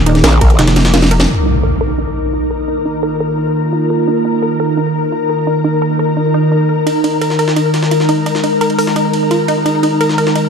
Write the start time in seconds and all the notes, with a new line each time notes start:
Already playing: D#1 D#3 A#3 D#4 G#4 A#4 D6
0.06 D#4, closed hi-hat, ride
0.15 snare, closed hi-hat
0.24 A#1 A#4, snare, closed hi-hat, ride
0.33 snare, ride
0.41 A#1 A#4, kick, closed hi-hat, ride
0.50 closed hi-hat
0.59 F1 D#4, snare, closed hi-hat, ride
0.67 snare, closed hi-hat, ride
0.76 snare, closed hi-hat, ride
0.85 snare, ride
0.94 F4, snare, closed hi-hat
1.02 snare, ride
1.11 A#4, closed hi-hat, ride
1.20 snare
1.28 D#3 A#3 D#4 F4, impact
1.36 A#4
1.46 D#4
1.63 A#4
1.71 A#5
1.81 A#4
1.98 D#4
2.33 F4
2.51 A#4
2.68 D#4
2.86 D#4
3.03 A#4
3.20 A#4
3.38 D#4
3.73 F4
3.90 A#4
4.08 D#4
4.25 D#4
4.42 A#4
4.60 A#4
4.77 D#4
5.12 F4
5.30 A#4
5.47 D#4
5.64 D#4
5.82 A#4
5.99 A#4
6.17 D#4
6.34 D#4
6.52 D#4
6.69 A#4
6.86 G#3 D#4 A#4, ride
7.04 D#4, ride
7.21 A#4, ride
7.30 snare
7.39 A#4, ride
7.48 snare
7.56 D#4, ride
7.74 snare, ride
7.83 snare
7.91 F4, ride
8.00 snare
8.09 D#4, ride
8.26 D#4, ride
8.35 snare
8.44 D#4, ride
8.61 A#4, ride
8.70 ride
8.79 A#4, open hi-hat
8.87 snare
8.96 D#4, ride
9.13 ride
9.31 F4, ride
9.48 D#4, ride
9.66 D#4, ride
9.83 D#4, ride
10.01 A#4, ride
10.09 snare
10.18 A#4, ride
10.27 snare
10.35 D#4, ride